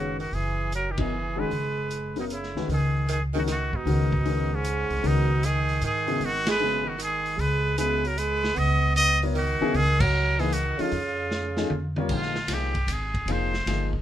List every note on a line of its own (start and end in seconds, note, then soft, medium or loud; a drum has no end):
0.00 0.28 F#1 medium
0.00 0.19 C#3 medium
0.00 0.17 D#3 soft
0.00 0.17 G#3 soft
0.00 0.17 C#4 soft
0.00 0.17 F#4 medium
0.00 0.20 F#4 medium
0.00 0.17 B4 medium
0.20 0.36 D#3 medium
0.20 0.36 F#4 medium
0.20 open hi-hat soft
0.32 1.46 F#1 medium
0.32 0.73 E3 medium
0.32 0.72 G#4 medium
0.32 open hi-hat soft
0.72 0.92 F#3 medium
0.72 0.93 A#4 medium
0.72 closed hi-hat soft
0.90 1.01 D#3 soft
0.90 1.01 G4 medium
0.98 1.41 E3 medium
0.98 1.10 F#3 medium
0.98 1.10 B3 medium
0.98 1.10 E4 soft
0.98 1.41 G#4 medium
0.98 1.10 A#4 medium
0.98 1.10 D#5 medium
0.98 kick medium
0.98 ride medium
1.36 1.49 D#3 medium
1.36 1.48 G#3 medium
1.36 2.17 G#3 medium
1.36 1.48 C#4 medium
1.36 1.49 F#4 medium
1.36 1.49 G#4 medium
1.36 2.17 B4 medium
1.51 2.51 F#1 medium
1.51 open hi-hat soft
1.91 closed hi-hat soft
2.16 2.24 B2 soft
2.16 2.28 C#3 medium
2.16 2.28 F#3 medium
2.16 2.28 B3 medium
2.16 2.28 E4 soft
2.16 2.28 A#4 medium
2.16 open hi-hat soft
2.20 2.25 D#4 medium
2.30 2.67 C#3 medium
2.30 2.68 E4 medium
2.30 closed hi-hat soft
2.43 snare soft
2.54 2.67 D2 medium
2.54 2.67 D#3 medium
2.54 2.68 G#3 medium
2.54 2.68 C#4 medium
2.54 2.68 F#4 medium
2.54 2.68 B4 medium
2.54 snare soft
2.68 3.69 C#2 medium
2.68 3.06 D#3 medium
2.68 open hi-hat soft
2.73 3.07 G#4 medium
3.09 3.20 D#3 medium
3.09 3.22 G#4 medium
3.09 closed hi-hat medium
3.34 3.40 D#3 medium
3.34 3.46 D#3 medium
3.34 3.46 G#3 medium
3.34 3.46 C#4 medium
3.34 3.46 F#4 medium
3.34 3.46 A#4 medium
3.34 open hi-hat soft
3.38 3.43 F#4 medium
3.48 3.76 D#3 medium
3.48 3.78 F#4 medium
3.48 snare soft
3.48 closed hi-hat medium
3.73 3.85 G#2 medium
3.73 4.55 B2 medium
3.73 4.57 D#4 medium
3.73 kick medium
3.85 4.86 C#2 medium
3.85 4.09 D#3 medium
3.85 4.09 G#3 medium
3.85 4.10 C#4 medium
3.85 4.10 F#4 medium
3.85 4.10 A#4 medium
3.85 open hi-hat soft
4.12 kick medium
4.25 4.49 D#3 medium
4.25 4.49 G#3 medium
4.25 4.49 C#4 medium
4.25 4.49 F#4 medium
4.25 4.49 A#4 medium
4.25 open hi-hat soft
4.54 5.08 G#2 medium
4.54 5.09 C#4 medium
4.64 closed hi-hat medium
4.90 5.02 C2 medium
4.90 open hi-hat soft
5.03 5.78 C#2 medium
5.03 5.47 B2 medium
5.03 5.27 D#3 medium
5.03 5.27 G#3 medium
5.03 5.27 C#4 medium
5.03 5.27 F#4 medium
5.03 5.27 A#4 medium
5.03 open hi-hat soft
5.07 5.46 D#4 loud
5.43 5.83 D#3 medium
5.43 5.83 G#4 medium
5.43 closed hi-hat medium
5.69 open hi-hat soft
5.81 6.18 G#2 medium
5.81 6.23 D#3 medium
5.81 closed hi-hat medium
5.86 6.27 G#4 medium
6.07 6.20 C#3 medium
6.07 6.20 F#3 medium
6.07 6.20 B3 medium
6.07 6.20 E4 medium
6.07 6.20 G#4 medium
6.07 open hi-hat soft
6.20 7.34 G#1 medium
6.20 6.47 D#3 medium
6.20 open hi-hat soft
6.25 6.49 F#4 loud
6.47 6.86 G#3 medium
6.47 6.90 B4 loud
6.47 snare medium
6.47 ride medium
6.60 6.84 C#3 medium
6.60 6.84 F#3 soft
6.60 6.84 B3 soft
6.60 6.84 E4 soft
6.60 6.84 G#4 medium
6.85 6.97 D#3 medium
6.85 7.01 F#4 medium
6.98 7.39 D#3 medium
6.98 closed hi-hat medium
7.03 7.42 G#4 loud
7.26 open hi-hat soft
7.37 8.52 C#2 medium
7.37 7.77 G#3 medium
7.37 7.78 B4 loud
7.37 open hi-hat soft
7.78 8.01 C#3 medium
7.78 8.01 F#3 medium
7.78 8.07 G#3 medium
7.78 8.01 B3 medium
7.78 8.02 E4 medium
7.78 8.02 G#4 medium
7.78 8.09 B4 medium
7.78 closed hi-hat medium
8.05 8.20 F#3 medium
8.05 8.20 A#4 medium
8.05 open hi-hat soft
8.18 8.57 G#3 medium
8.18 8.60 B4 loud
8.18 closed hi-hat medium
8.44 snare medium
8.55 9.57 C#2 medium
8.55 8.95 B3 medium
8.55 8.96 D#5 loud
8.55 open hi-hat soft
8.96 9.21 B3 medium
8.96 9.20 D#5 loud
8.96 closed hi-hat medium
9.22 9.35 F#3 medium
9.22 9.34 B3 medium
9.22 9.35 E4 medium
9.22 9.34 A#4 medium
9.22 9.35 C#5 medium
9.22 open hi-hat soft
9.35 9.74 D#3 medium
9.35 9.78 F#4 medium
9.35 open hi-hat soft
9.61 9.73 C2 medium
9.61 9.73 C#3 medium
9.61 9.73 F#3 medium
9.61 9.73 B3 medium
9.61 9.73 E4 medium
9.61 9.73 G#4 loud
9.74 10.75 C#2 medium
9.74 10.02 D#3 medium
9.74 10.02 G#4 loud
9.74 open hi-hat soft
10.00 10.40 F#3 medium
10.00 10.42 A#4 loud
10.00 kick medium
10.00 crash medium
10.39 10.54 E3 medium
10.39 10.51 E3 medium
10.39 10.52 A#3 medium
10.39 10.52 D#4 medium
10.39 10.52 G#4 medium
10.39 10.55 G#4 medium
10.39 10.51 B4 medium
10.39 open hi-hat soft
10.52 10.79 D#3 medium
10.52 10.83 F#4 medium
10.52 closed hi-hat medium
10.78 11.96 C#3 medium
10.78 10.91 F3 medium
10.78 10.91 A3 medium
10.78 10.91 C#4 medium
10.78 10.91 D#4 medium
10.78 10.91 F4 medium
10.78 11.98 F4 medium
10.78 muted upright bass stroke soft
10.78 open hi-hat soft
10.92 11.66 F2 medium
10.92 open hi-hat soft
11.31 snare medium
11.57 11.70 F3 medium
11.57 11.70 A3 medium
11.57 11.69 C#4 medium
11.57 11.69 D#4 medium
11.57 11.70 G#4 medium
11.57 snare medium
11.70 12.07 F2 medium
11.70 high tom medium
11.96 12.09 G3 medium
11.96 12.09 C4 medium
11.96 12.09 F4 medium
11.96 12.09 A#4 medium
11.96 12.09 C#5 medium
11.96 high tom medium
12.09 12.47 A#1 medium
12.09 12.34 F3 medium
12.09 12.34 A#3 medium
12.09 12.34 D#4 medium
12.09 12.34 G#4 medium
12.09 12.34 C5 medium
12.09 kick medium
12.09 crash medium
12.13 12.55 F4 medium
12.22 snare soft
12.35 snare soft
12.48 12.87 C2 medium
12.48 12.73 F3 soft
12.48 12.73 A#3 soft
12.48 12.73 D#4 soft
12.48 12.74 G#4 medium
12.48 12.73 C5 medium
12.48 snare soft
12.48 hi-hat pedal medium
12.48 ride medium
12.54 12.94 G4 medium
12.75 kick medium
12.75 ride soft
12.87 13.25 G#1 medium
12.87 hi-hat pedal medium
12.87 ride medium
12.93 13.34 G#4 medium
13.14 kick medium
13.14 ride soft
13.26 13.65 F1 medium
13.26 13.51 F3 medium
13.26 13.51 A#3 medium
13.26 13.51 D#4 medium
13.26 13.52 G#4 medium
13.26 13.51 C5 medium
13.26 ride medium
13.32 13.95 C5 medium
13.54 snare soft
13.66 14.02 G1 medium
13.66 13.91 F3 medium
13.66 13.91 A#3 medium
13.66 13.91 D#4 medium
13.66 13.91 G#4 medium
13.66 13.91 D#5 medium
13.66 snare soft
13.66 ride medium
13.93 kick medium